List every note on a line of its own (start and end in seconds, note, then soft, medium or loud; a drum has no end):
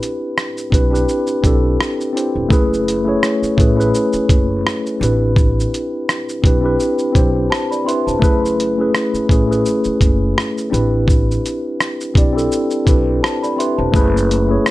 0.00 0.47 C4 medium
0.00 0.45 D4 medium
0.00 0.45 E4 medium
0.00 0.46 G4 medium
0.00 0.46 B4 loud
0.00 closed hi-hat medium
0.00 shaker soft
0.38 cross-stick loud
0.38 shaker medium
0.57 shaker soft
0.70 1.04 B1 medium
0.70 0.83 C4 medium
0.70 0.84 D4 medium
0.70 0.84 E4 medium
0.70 0.85 G4 medium
0.70 kick medium
0.70 closed hi-hat medium
0.70 shaker soft
0.75 0.85 B4 medium
0.90 1.23 C4 medium
0.90 1.24 D4 medium
0.90 1.24 E4 medium
0.90 1.25 G4 medium
0.90 1.25 B4 medium
0.95 shaker soft
1.09 shaker medium
1.27 shaker soft
1.42 1.75 B1 medium
1.42 1.87 C4 medium
1.42 1.88 D4 medium
1.42 1.88 E4 medium
1.42 1.89 G4 medium
1.42 kick medium
1.42 closed hi-hat medium
1.42 shaker soft
1.47 1.89 A4 medium
1.81 cross-stick medium
1.81 shaker medium
2.01 shaker soft
2.13 2.37 C4 medium
2.13 2.38 D4 medium
2.13 2.38 E4 medium
2.13 2.39 G4 medium
2.17 2.39 C5 medium
2.17 closed hi-hat medium
2.17 shaker soft
2.35 2.51 E1 medium
2.49 3.13 F#1 medium
2.49 2.83 A3 loud
2.49 2.83 C#4 medium
2.49 2.84 E4 medium
2.49 2.84 G#4 loud
2.49 kick loud
2.49 shaker soft
2.53 2.85 B4 loud
2.74 shaker soft
2.88 closed hi-hat medium
2.88 shaker soft
3.04 3.37 A3 medium
3.04 3.38 C#4 medium
3.04 3.38 E4 medium
3.04 3.39 G#4 medium
3.09 3.40 C#5 medium
3.23 cross-stick medium
3.23 shaker medium
3.43 muted upright bass stroke soft
3.43 shaker medium
3.57 3.89 A1 medium
3.57 3.69 A3 medium
3.57 3.70 C#4 medium
3.57 3.70 E4 medium
3.57 3.71 G#4 medium
3.57 kick medium
3.57 closed hi-hat medium
3.57 shaker soft
3.61 3.71 B4 medium
3.76 4.62 A3 medium
3.76 4.62 C#4 medium
3.76 4.63 E4 medium
3.76 4.63 G#4 medium
3.80 4.64 B4 loud
3.80 shaker soft
3.94 shaker medium
4.13 muted upright bass stroke soft
4.13 shaker soft
4.29 4.61 F#1 medium
4.29 kick medium
4.29 closed hi-hat medium
4.29 shaker soft
4.67 cross-stick medium
4.67 shaker medium
4.86 shaker soft
5.00 5.63 A1 loud
5.00 6.15 C4 medium
5.00 6.16 D4 medium
5.00 6.16 E4 medium
5.00 6.17 G4 medium
5.00 closed hi-hat medium
5.00 shaker soft
5.04 6.17 B4 medium
5.36 kick loud
5.36 shaker medium
5.60 shaker soft
5.74 closed hi-hat medium
5.74 shaker soft
6.09 cross-stick medium
6.09 shaker medium
6.29 shaker medium
6.42 6.75 B1 medium
6.42 6.55 C4 medium
6.42 6.56 D4 medium
6.42 6.56 E4 medium
6.42 6.56 G4 medium
6.42 kick medium
6.42 closed hi-hat medium
6.42 shaker soft
6.47 6.57 B4 medium
6.61 6.94 C4 medium
6.61 6.95 D4 medium
6.61 6.95 E4 medium
6.61 6.96 G4 medium
6.65 6.97 B4 medium
6.80 shaker medium
6.99 shaker soft
7.12 7.46 B1 medium
7.12 7.58 C4 medium
7.12 7.58 D4 medium
7.12 7.59 E4 medium
7.12 7.59 G4 medium
7.12 kick medium
7.12 closed hi-hat soft
7.12 shaker soft
7.17 7.60 C5 medium
7.50 7.70 C5 medium
7.50 7.69 A5 medium
7.50 cross-stick medium
7.50 shaker medium
7.70 7.86 D5 medium
7.70 7.86 B5 medium
7.70 shaker soft
7.85 8.09 C4 medium
7.85 8.09 D4 medium
7.85 8.10 E4 medium
7.85 8.10 G4 medium
7.85 8.11 B4 medium
7.85 8.06 E5 medium
7.85 8.05 C6 medium
7.85 closed hi-hat medium
7.85 shaker soft
8.07 8.22 E1 medium
8.07 8.41 C5 medium
8.07 8.40 A5 medium
8.07 shaker soft
8.19 8.85 F#1 medium
8.19 8.53 A3 loud
8.19 8.54 C#4 medium
8.19 8.55 E4 medium
8.19 8.55 G#4 medium
8.19 kick medium
8.23 8.56 B4 loud
8.23 shaker medium
8.45 shaker soft
8.60 closed hi-hat medium
8.60 shaker soft
8.77 9.10 A3 medium
8.77 9.10 C#4 medium
8.77 9.11 E4 medium
8.77 9.11 G#4 medium
8.82 9.12 B4 medium
8.95 cross-stick loud
8.95 shaker medium
9.14 muted upright bass stroke soft
9.14 shaker soft
9.29 9.61 A1 medium
9.29 9.41 A3 medium
9.29 9.42 C#4 medium
9.29 9.42 E4 medium
9.29 9.43 G#4 medium
9.29 kick medium
9.29 closed hi-hat medium
9.29 shaker soft
9.33 9.43 B4 medium
9.47 10.33 A3 medium
9.47 10.34 C#4 medium
9.47 10.34 E4 medium
9.47 10.35 G#4 medium
9.52 10.35 B4 medium
9.52 shaker soft
9.65 shaker medium
9.84 muted upright bass stroke soft
9.84 shaker soft
10.01 10.32 F#1 medium
10.01 kick medium
10.01 closed hi-hat medium
10.01 shaker soft
10.38 cross-stick medium
10.38 shaker medium
10.58 shaker soft
10.70 11.35 A1 loud
10.70 11.86 C4 medium
10.70 11.87 D4 medium
10.70 11.87 E4 medium
10.70 11.88 G4 medium
10.70 11.88 B4 medium
10.74 closed hi-hat medium
10.74 shaker soft
11.08 kick loud
11.08 shaker medium
11.31 shaker soft
11.46 closed hi-hat medium
11.46 shaker soft
11.81 cross-stick medium
11.81 shaker medium
12.01 shaker medium
12.14 12.46 B1 medium
12.14 12.27 C4 medium
12.14 12.27 D4 medium
12.14 12.28 E4 medium
12.14 12.28 G4 medium
12.14 kick medium
12.14 closed hi-hat medium
12.14 shaker soft
12.18 12.29 D5 medium
12.33 12.66 C4 medium
12.33 12.66 D4 medium
12.33 12.67 E4 medium
12.33 12.67 G4 medium
12.37 12.68 A4 medium
12.37 shaker soft
12.52 shaker medium
12.71 shaker soft
12.85 13.18 B1 medium
12.85 13.30 C4 medium
12.85 13.30 D4 medium
12.85 13.31 E4 medium
12.85 13.31 G4 medium
12.85 kick medium
12.85 closed hi-hat medium
12.85 shaker soft
12.89 13.32 B4 medium
13.23 13.42 C5 medium
13.23 13.41 A5 medium
13.23 cross-stick medium
13.23 shaker medium
13.43 13.58 D5 medium
13.43 13.57 B5 medium
13.43 shaker soft
13.56 13.80 C4 medium
13.56 13.81 D4 medium
13.56 13.81 E4 medium
13.56 13.82 G4 medium
13.56 13.77 E5 medium
13.56 13.77 C6 medium
13.56 closed hi-hat medium
13.56 shaker soft
13.61 13.82 B4 medium
13.78 13.92 E1 medium
13.78 14.12 C5 medium
13.78 14.12 A5 medium
13.92 14.56 F#1 medium
13.92 14.26 A3 loud
13.92 14.26 C#4 loud
13.92 14.27 E4 medium
13.92 14.27 G#4 medium
13.92 kick loud
13.92 shaker medium
13.96 14.28 B4 loud
14.17 shaker soft
14.31 closed hi-hat medium
14.31 shaker soft
14.47 14.71 A3 medium
14.47 14.71 C#4 medium
14.47 14.71 E4 medium
14.47 14.71 G#4 medium
14.51 14.71 C#5 medium
14.66 cross-stick loud
14.66 shaker medium